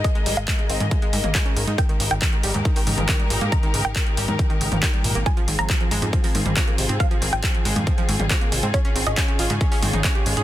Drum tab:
HH |xxoxxxoxxxoxxxox|xxoxxxoxxooxxxox|xxoxxxoxxxoxxxox|xxoxxxoxxooxxxox|
CP |----x-------x---|----x-------x---|----x-------x---|----x-------x---|
T2 |-------o---o----|----------oo----|-------o---o----|----------oo----|
BD |o---o---o---o---|o---o---o---o---|o---o---o---o---|o---o---o---o---|

HH |xxoxxxoxxxoxxxox|xxoxxxoxxooxxxox|
CP |----x-------x---|----x-------x---|
T2 |-------o---o----|----------oo----|
BD |o---o---o---o---|o---o---o---o---|